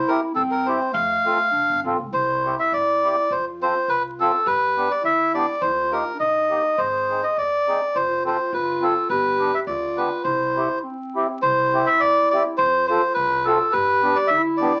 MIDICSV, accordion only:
0, 0, Header, 1, 2, 480
1, 0, Start_track
1, 0, Key_signature, 0, "major"
1, 0, Tempo, 587659
1, 770, Time_signature, 2, 2, 24, 8
1, 2699, Tempo, 578592
1, 12236, End_track
2, 0, Start_track
2, 0, Title_t, "Accordion"
2, 0, Program_c, 0, 21
2, 72, Note_on_c, 0, 60, 52
2, 73, Note_on_c, 0, 64, 51
2, 74, Note_on_c, 0, 67, 60
2, 172, Note_off_c, 0, 60, 0
2, 173, Note_off_c, 0, 64, 0
2, 173, Note_off_c, 0, 67, 0
2, 551, Note_on_c, 0, 60, 69
2, 551, Note_on_c, 0, 64, 57
2, 555, Note_on_c, 0, 67, 75
2, 649, Note_off_c, 0, 60, 0
2, 649, Note_off_c, 0, 64, 0
2, 652, Note_off_c, 0, 67, 0
2, 1025, Note_on_c, 0, 60, 44
2, 1030, Note_on_c, 0, 65, 55
2, 1031, Note_on_c, 0, 69, 54
2, 1126, Note_off_c, 0, 60, 0
2, 1128, Note_off_c, 0, 65, 0
2, 1129, Note_off_c, 0, 69, 0
2, 1509, Note_on_c, 0, 60, 64
2, 1512, Note_on_c, 0, 65, 65
2, 1516, Note_on_c, 0, 69, 69
2, 1611, Note_off_c, 0, 60, 0
2, 1612, Note_off_c, 0, 65, 0
2, 1615, Note_off_c, 0, 69, 0
2, 2002, Note_on_c, 0, 60, 51
2, 2004, Note_on_c, 0, 67, 50
2, 2006, Note_on_c, 0, 64, 49
2, 2099, Note_off_c, 0, 60, 0
2, 2100, Note_off_c, 0, 67, 0
2, 2102, Note_off_c, 0, 64, 0
2, 2477, Note_on_c, 0, 60, 54
2, 2484, Note_on_c, 0, 67, 62
2, 2485, Note_on_c, 0, 64, 55
2, 2576, Note_off_c, 0, 60, 0
2, 2580, Note_off_c, 0, 67, 0
2, 2581, Note_off_c, 0, 64, 0
2, 2963, Note_on_c, 0, 60, 45
2, 2965, Note_on_c, 0, 65, 52
2, 2966, Note_on_c, 0, 69, 52
2, 3060, Note_off_c, 0, 60, 0
2, 3061, Note_off_c, 0, 65, 0
2, 3062, Note_off_c, 0, 69, 0
2, 3443, Note_on_c, 0, 60, 62
2, 3445, Note_on_c, 0, 65, 55
2, 3447, Note_on_c, 0, 69, 78
2, 3539, Note_off_c, 0, 60, 0
2, 3540, Note_off_c, 0, 65, 0
2, 3541, Note_off_c, 0, 69, 0
2, 3915, Note_on_c, 0, 59, 53
2, 3917, Note_on_c, 0, 62, 56
2, 3918, Note_on_c, 0, 67, 61
2, 4013, Note_off_c, 0, 59, 0
2, 4014, Note_off_c, 0, 62, 0
2, 4014, Note_off_c, 0, 67, 0
2, 4389, Note_on_c, 0, 59, 64
2, 4393, Note_on_c, 0, 67, 64
2, 4394, Note_on_c, 0, 62, 62
2, 4488, Note_off_c, 0, 59, 0
2, 4490, Note_off_c, 0, 62, 0
2, 4490, Note_off_c, 0, 67, 0
2, 4864, Note_on_c, 0, 58, 50
2, 4865, Note_on_c, 0, 63, 41
2, 4870, Note_on_c, 0, 67, 54
2, 4966, Note_off_c, 0, 58, 0
2, 4967, Note_off_c, 0, 63, 0
2, 4969, Note_off_c, 0, 67, 0
2, 5347, Note_on_c, 0, 58, 59
2, 5350, Note_on_c, 0, 63, 56
2, 5350, Note_on_c, 0, 67, 56
2, 5451, Note_off_c, 0, 58, 0
2, 5452, Note_off_c, 0, 63, 0
2, 5452, Note_off_c, 0, 67, 0
2, 5842, Note_on_c, 0, 63, 36
2, 5847, Note_on_c, 0, 60, 43
2, 5848, Note_on_c, 0, 68, 50
2, 5944, Note_off_c, 0, 63, 0
2, 5946, Note_off_c, 0, 60, 0
2, 5947, Note_off_c, 0, 68, 0
2, 6326, Note_on_c, 0, 60, 63
2, 6328, Note_on_c, 0, 63, 51
2, 6332, Note_on_c, 0, 68, 63
2, 6427, Note_off_c, 0, 60, 0
2, 6428, Note_off_c, 0, 63, 0
2, 6430, Note_off_c, 0, 68, 0
2, 6801, Note_on_c, 0, 60, 60
2, 6802, Note_on_c, 0, 69, 55
2, 6803, Note_on_c, 0, 65, 49
2, 6902, Note_off_c, 0, 60, 0
2, 6902, Note_off_c, 0, 69, 0
2, 6903, Note_off_c, 0, 65, 0
2, 7266, Note_on_c, 0, 60, 54
2, 7268, Note_on_c, 0, 65, 52
2, 7274, Note_on_c, 0, 69, 66
2, 7371, Note_off_c, 0, 60, 0
2, 7372, Note_off_c, 0, 65, 0
2, 7375, Note_off_c, 0, 69, 0
2, 7743, Note_on_c, 0, 59, 55
2, 7745, Note_on_c, 0, 67, 56
2, 7753, Note_on_c, 0, 62, 46
2, 7848, Note_off_c, 0, 59, 0
2, 7849, Note_off_c, 0, 67, 0
2, 7853, Note_off_c, 0, 62, 0
2, 8230, Note_on_c, 0, 59, 58
2, 8232, Note_on_c, 0, 62, 48
2, 8232, Note_on_c, 0, 67, 60
2, 8331, Note_off_c, 0, 59, 0
2, 8332, Note_off_c, 0, 62, 0
2, 8332, Note_off_c, 0, 67, 0
2, 8717, Note_on_c, 0, 60, 45
2, 8719, Note_on_c, 0, 64, 42
2, 8725, Note_on_c, 0, 67, 59
2, 8818, Note_off_c, 0, 60, 0
2, 8819, Note_off_c, 0, 64, 0
2, 8821, Note_off_c, 0, 67, 0
2, 9209, Note_on_c, 0, 64, 54
2, 9213, Note_on_c, 0, 60, 70
2, 9215, Note_on_c, 0, 67, 73
2, 9309, Note_off_c, 0, 64, 0
2, 9310, Note_off_c, 0, 60, 0
2, 9312, Note_off_c, 0, 67, 0
2, 9692, Note_on_c, 0, 60, 52
2, 9693, Note_on_c, 0, 64, 55
2, 9698, Note_on_c, 0, 67, 58
2, 9793, Note_off_c, 0, 60, 0
2, 9794, Note_off_c, 0, 64, 0
2, 9797, Note_off_c, 0, 67, 0
2, 10183, Note_on_c, 0, 64, 62
2, 10184, Note_on_c, 0, 60, 67
2, 10185, Note_on_c, 0, 67, 75
2, 10279, Note_off_c, 0, 64, 0
2, 10280, Note_off_c, 0, 60, 0
2, 10280, Note_off_c, 0, 67, 0
2, 10649, Note_on_c, 0, 65, 61
2, 10652, Note_on_c, 0, 60, 62
2, 10659, Note_on_c, 0, 69, 72
2, 10749, Note_off_c, 0, 65, 0
2, 10751, Note_off_c, 0, 60, 0
2, 10754, Note_off_c, 0, 69, 0
2, 11127, Note_on_c, 0, 60, 74
2, 11129, Note_on_c, 0, 65, 74
2, 11132, Note_on_c, 0, 69, 88
2, 11226, Note_off_c, 0, 60, 0
2, 11227, Note_off_c, 0, 65, 0
2, 11229, Note_off_c, 0, 69, 0
2, 11594, Note_on_c, 0, 59, 66
2, 11595, Note_on_c, 0, 67, 68
2, 11599, Note_on_c, 0, 62, 67
2, 11696, Note_off_c, 0, 59, 0
2, 11697, Note_off_c, 0, 67, 0
2, 11699, Note_off_c, 0, 62, 0
2, 12077, Note_on_c, 0, 59, 65
2, 12077, Note_on_c, 0, 62, 69
2, 12079, Note_on_c, 0, 67, 70
2, 12176, Note_off_c, 0, 59, 0
2, 12176, Note_off_c, 0, 62, 0
2, 12177, Note_off_c, 0, 67, 0
2, 12236, End_track
0, 0, End_of_file